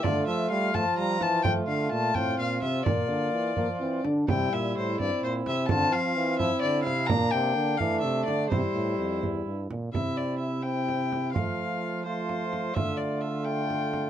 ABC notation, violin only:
X:1
M:6/8
L:1/8
Q:3/8=85
K:Cmix
V:1 name="Violin"
d e f a b a | g f a g f e | d4- d z | g e c d c e |
a f2 e d f | b g2 f e d | c3 z3 | e d e g3 |
f3 c3 | e d e g3 |]